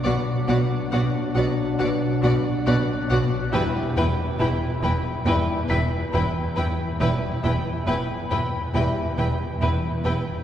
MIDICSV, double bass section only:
0, 0, Header, 1, 2, 480
1, 0, Start_track
1, 0, Tempo, 869565
1, 29, Time_signature, 4, 2, 24, 8
1, 5760, End_track
2, 0, Start_track
2, 0, Title_t, "Double bass section"
2, 0, Program_c, 0, 48
2, 28, Note_on_c, 0, 35, 80
2, 72, Note_off_c, 0, 35, 0
2, 269, Note_on_c, 0, 35, 70
2, 313, Note_off_c, 0, 35, 0
2, 509, Note_on_c, 0, 35, 70
2, 553, Note_off_c, 0, 35, 0
2, 751, Note_on_c, 0, 35, 70
2, 795, Note_off_c, 0, 35, 0
2, 991, Note_on_c, 0, 35, 70
2, 1036, Note_off_c, 0, 35, 0
2, 1230, Note_on_c, 0, 35, 76
2, 1274, Note_off_c, 0, 35, 0
2, 1473, Note_on_c, 0, 35, 73
2, 1517, Note_off_c, 0, 35, 0
2, 1711, Note_on_c, 0, 35, 75
2, 1755, Note_off_c, 0, 35, 0
2, 1953, Note_on_c, 0, 28, 84
2, 1998, Note_off_c, 0, 28, 0
2, 2193, Note_on_c, 0, 28, 75
2, 2237, Note_off_c, 0, 28, 0
2, 2431, Note_on_c, 0, 28, 66
2, 2475, Note_off_c, 0, 28, 0
2, 2669, Note_on_c, 0, 28, 74
2, 2714, Note_off_c, 0, 28, 0
2, 2909, Note_on_c, 0, 28, 69
2, 2953, Note_off_c, 0, 28, 0
2, 3151, Note_on_c, 0, 28, 73
2, 3195, Note_off_c, 0, 28, 0
2, 3390, Note_on_c, 0, 28, 73
2, 3435, Note_off_c, 0, 28, 0
2, 3631, Note_on_c, 0, 28, 65
2, 3675, Note_off_c, 0, 28, 0
2, 3870, Note_on_c, 0, 28, 78
2, 3914, Note_off_c, 0, 28, 0
2, 4111, Note_on_c, 0, 28, 60
2, 4155, Note_off_c, 0, 28, 0
2, 4351, Note_on_c, 0, 28, 66
2, 4396, Note_off_c, 0, 28, 0
2, 4590, Note_on_c, 0, 28, 60
2, 4634, Note_off_c, 0, 28, 0
2, 4831, Note_on_c, 0, 28, 70
2, 4875, Note_off_c, 0, 28, 0
2, 5070, Note_on_c, 0, 28, 64
2, 5114, Note_off_c, 0, 28, 0
2, 5309, Note_on_c, 0, 28, 55
2, 5353, Note_off_c, 0, 28, 0
2, 5548, Note_on_c, 0, 28, 58
2, 5592, Note_off_c, 0, 28, 0
2, 5760, End_track
0, 0, End_of_file